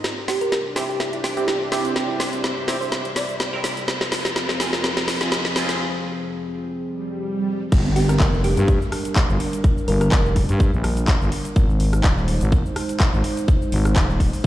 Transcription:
Already playing: C4 A#4
0.04 C3 G3 D4 E4, snare, closed hi-hat, riser, shaker
0.13 G4
0.28 G4, snare, open hi-hat, shaker
0.41 A#4, closed hi-hat, shaker
0.52 snare, closed hi-hat, shaker
0.74 C4 E4 G4 C5, snare, open hi-hat, shaker
0.89 G4, shaker
1.00 E4, snare, closed hi-hat, shaker
1.13 E4, closed hi-hat
1.24 G4, snare, open hi-hat, shaker
1.32 E5
1.37 C4 E4 G4, closed hi-hat, shaker
1.48 snare, closed hi-hat, shaker
1.72 C4 E4 G4, snare, open hi-hat, shaker
1.85 closed hi-hat, shaker
1.96 snare, closed hi-hat, shaker
2.20 snare, open hi-hat, shaker
2.33 closed hi-hat, shaker
2.44 snare, closed hi-hat, shaker
2.68 C4 E4 G4 C5, snare, open hi-hat, shaker
2.81 C5, shaker
2.92 snare, closed hi-hat, shaker
3.05 closed hi-hat
3.16 D5, snare, open hi-hat, shaker
3.29 closed hi-hat, shaker
3.40 snare, closed hi-hat, shaker
3.53 C4 E4 A#4
3.64 snare, open hi-hat, shaker
3.77 closed hi-hat, shaker
3.88 F3 C4 F4 G#4, snare, closed hi-hat, shaker
4.01 snare
4.12 snare, open hi-hat, shaker
4.24 A#4, snare, closed hi-hat, shaker
4.36 snare, closed hi-hat, shaker
4.49 snare
4.60 C4 F4 G#4, snare, open hi-hat, shaker
4.73 snare, shaker
4.84 snare, closed hi-hat, shaker
4.97 snare, closed hi-hat
5.08 snare, open hi-hat, shaker
5.16 D#5
5.21 C4 F4 G#4, snare, closed hi-hat, shaker
5.32 snare, closed hi-hat, shaker
5.45 snare
5.56 C4 F4 G#4, snare, open hi-hat, shaker
5.61 G#5
5.69 snare, closed hi-hat, shaker
6.76 swell
7.72 G1 G3 D4 A#4, kick, closed hi-hat, crash, downlifter, shaker
7.86 shaker
7.96 G4, open hi-hat
8.09 A#4, cross-stick, closed hi-hat, shaker
8.20 F1, kick, clap, closed hi-hat, shaker
8.34 shaker
8.44 G4, open hi-hat
8.57 G2 G4, closed hi-hat, shaker
8.68 kick, closed hi-hat, shaker
8.82 shaker
8.92 cross-stick, open hi-hat
9.05 closed hi-hat, shaker
9.16 kick, clap, closed hi-hat, shaker
9.29 G1, shaker
9.40 open hi-hat
9.53 closed hi-hat, shaker
9.64 kick, closed hi-hat, shaker
9.78 shaker
9.88 G1 A#4, open hi-hat
10.01 A#4, cross-stick, closed hi-hat, shaker
10.12 F1 A#4, kick, clap, closed hi-hat, shaker
10.26 shaker
10.36 kick, open hi-hat
10.49 G2, closed hi-hat, shaker
10.60 kick, closed hi-hat, shaker
10.73 A#1, shaker
10.84 cross-stick, open hi-hat
10.97 closed hi-hat, shaker
11.08 kick, clap, closed hi-hat, shaker
11.21 G1, shaker
11.32 open hi-hat
11.45 closed hi-hat, shaker
11.56 G#1 G#3 D#4 C5, kick, closed hi-hat, shaker
11.70 shaker
11.80 open hi-hat
11.93 cross-stick, closed hi-hat, shaker
12.04 D#1, kick, clap, closed hi-hat, shaker
12.18 shaker
12.28 open hi-hat
12.41 G#1, closed hi-hat, shaker
12.52 kick, closed hi-hat, shaker
12.66 shaker
12.76 cross-stick, open hi-hat
12.89 closed hi-hat, shaker
13.00 kick, clap, closed hi-hat, shaker
13.13 G#1, shaker
13.24 open hi-hat
13.37 closed hi-hat, shaker
13.48 kick, closed hi-hat, shaker
13.62 shaker
13.72 G#1, open hi-hat
13.85 cross-stick, closed hi-hat, shaker
13.96 D#1, kick, clap, closed hi-hat, shaker
14.10 shaker
14.20 kick, open hi-hat
14.33 open hi-hat, shaker

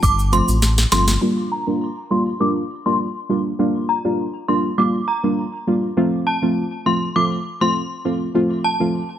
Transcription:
0.03 G1 D6, kick, shaker
0.19 shaker
0.32 F3 A3 C4 F4 C6, closed hi-hat, shaker
0.48 A1, shaker
0.62 snare, shaker
0.78 snare, shaker
0.92 G1 F3 A3 C4 F4 C6, snare, closed hi-hat, shaker
1.08 snare, shaker
1.21 G3 A#3 D4 F4
1.52 A#5
1.67 G3 A#3 D4 F4
2.10 G3 A#3 D4 F4 C6
2.40 G3 A#3 D4 F4 D6
2.86 G3 A#3 D4 F4 C6
3.29 G3 A#3 D4 F4
3.59 G3 A#3 D4 F4
3.89 A#5
4.04 G3 A#3 D4 F4
4.48 G3 A#3 D4 F4 C6
4.78 G3 A#3 D4 F4 D6
5.08 A#5
5.23 G3 A#3 D4 F4
5.67 G3 A#3 D4 F4
5.97 F3 A3 C4 F4
6.27 A5
6.42 F3 A3 C4 F4
6.86 F3 A3 C4 F4 C6
7.16 F3 A3 C4 F4 D6
7.61 F3 A3 C4 F4 C6
8.05 F3 A3 C4 F4
8.34 F3 A3 C4 F4
8.64 A5
8.80 F3 A3 C4 F4

